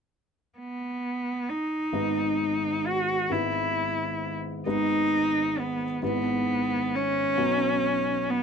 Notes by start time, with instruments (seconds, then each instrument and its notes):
0.58 cello B3
1.50 cello D#4
1.93 felt piano G#1 G#2 G#3 B3 D#4 B4
2.86 cello F#4
3.30 felt piano G#1 G#2 G#3 B3 E4 B4, cello E4
4.66 felt piano G#1 G#2 G#3 B3 D#4 B4, cello D#4
5.59 cello B3
6.03 felt piano G#1 G#2 G#3 B3 E4 B4, cello B3
6.95 cello C#4
7.38 felt piano B1 B2 F#3 C#4 D#4 B4
8.30 cello B3